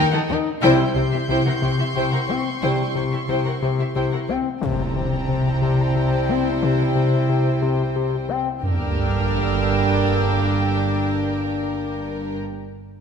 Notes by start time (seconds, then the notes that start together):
Already playing: D#3 D#4 A#4 G5 D#6 E6
0.12 D#3 D#4 A4 F#5
0.28 D#2 D#3 D#4 A#4 G5
0.61 C2 C3 G3 C4 E4 C5 G5 C6 G6
0.95 C2 C3 E4 C5 G5
1.11 C3 E4 G4 E5
1.28 C2 C3 E4 C5 G5 C#6
1.46 C3 E4 A#4 F#5
1.62 C2 C3 E4 C5 G5
1.78 C3 E4 G4 E5
1.95 C2 C3 E4 C5 G5
2.12 C3 E4 A#4 F#5
2.27 C2 C3 C4 E4 C5 G5
2.61 C2 C3 G3 C4 E4 C5 G5
2.95 C2 C3 E4 C5 G5
3.11 C3 E4 G4 E5
3.27 C2 C3 E4 C5 G5
3.44 C3 E4 A#4 F#5
3.61 C2 C3 E4 C5 G5
3.78 C3 E4 G4 E5
3.95 C2 C3 E4 C5 G5
4.11 C3 E4 A#4 F#5
4.27 C2 C3 C4 E4 C5 G5
4.61 C2 C3 G3 C4 E4 C5 G5 A5 A#5, impact
4.96 C3
5.29 C3
5.62 C3
5.96 C3
6.29 C4
6.62 C3
6.96 C3
7.29 C3
7.62 C3
7.96 C3
8.29 C4
8.62 G1 G2 D3 G3 A#3 D4 A#4 G5 D6 E6 F6, sub drop